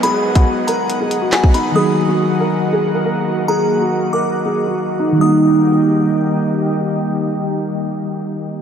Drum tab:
HH |x--x--x-x-x-x-x-|----------------|----------------|----------------|
CP |------------x---|----------------|----------------|----------------|
SD |------------o---|----------------|----------------|----------------|
BD |---o---------o--|----------------|----------------|----------------|

HH |----------------|
CP |----------------|
SD |----------------|
BD |----------------|